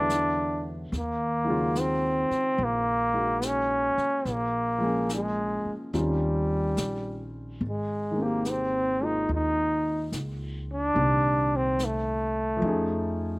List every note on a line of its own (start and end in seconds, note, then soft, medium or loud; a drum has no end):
0.00 0.88 E2 medium
0.00 0.92 D3 soft
0.00 0.92 F#3 soft
0.00 0.93 G#3 soft
0.00 0.93 B3 soft
0.00 0.68 D4 medium
0.00 0.94 E4 medium
0.10 snare soft
0.10 hi-hat pedal medium
0.92 2.26 D#2 medium
0.92 brush sweep soft
0.92 snare soft
0.98 1.81 A#3 medium
1.45 4.24 D#3 medium
1.45 4.25 F#3 soft
1.45 3.12 G#3 soft
1.49 4.26 C#3 soft
1.49 4.26 F4 medium
1.75 snare soft
1.75 hi-hat pedal soft
1.80 2.65 C4 medium
2.30 muted upright bass stroke soft
2.30 snare soft
2.58 3.92 A#1 medium
2.58 brush sweep soft
2.64 3.48 A#3 loud
3.13 4.25 G#3 soft
3.13 4.25 A#3 soft
3.13 4.25 D#4 soft
3.13 4.26 F#4 soft
3.42 snare soft
3.42 hi-hat pedal medium
3.47 4.32 C#4 medium
3.98 muted upright bass stroke soft
3.98 snare soft
4.25 5.60 A#1 medium
4.25 brush sweep soft
4.25 snare soft
4.31 5.12 A#3 medium
4.78 5.92 F3 soft
4.78 5.92 G#3 soft
4.78 5.93 A#3 soft
4.82 5.93 C#4 soft
4.82 5.94 G#4 medium
5.09 snare soft
5.09 hi-hat pedal soft
5.14 5.73 G#3 medium
5.65 muted upright bass stroke soft
5.93 6.73 D#2 medium
5.93 7.61 D#3 soft
5.93 7.62 G3 soft
5.93 7.62 C4 soft
5.93 7.62 C#4 soft
5.93 7.62 F4 medium
5.93 brush sweep soft
5.93 snare soft
6.00 7.32 G3 medium
6.77 7.57 A#1 medium
6.77 snare soft
6.77 hi-hat pedal medium
7.61 9.24 G#1 medium
7.61 brush sweep soft
7.69 8.25 G#3 medium
8.11 10.92 D#3 soft
8.11 8.99 G#3 soft
8.16 8.99 A#3 soft
8.16 10.96 C4 soft
8.22 8.47 A#3 medium
8.22 10.97 G4 medium
8.45 8.52 B3 medium
8.45 snare soft
8.45 hi-hat pedal medium
8.50 9.06 C4 medium
9.00 10.95 G#3 soft
9.00 10.96 A#3 soft
9.00 10.97 F4 soft
9.04 9.31 D#4 medium
9.29 10.08 D#2 medium
9.29 brush sweep soft
9.34 10.11 D#4 medium
10.12 10.92 C#2 medium
10.12 snare soft
10.12 hi-hat pedal soft
10.73 11.58 D4 loud
10.94 12.58 C2 medium
10.94 12.63 A#2 soft
10.94 12.61 D#3 soft
10.94 12.62 G3 soft
10.94 12.63 C4 soft
10.94 brush sweep soft
10.98 12.63 G4 soft
11.56 11.86 C4 medium
11.79 snare soft
11.79 hi-hat pedal soft
11.85 13.39 A3 medium
12.57 13.39 F3 medium
12.57 13.39 A3 medium
12.62 13.39 F2 medium
12.62 13.39 C#4 medium
12.62 13.39 D#4 soft
12.62 brush sweep soft
12.67 13.39 G#4 medium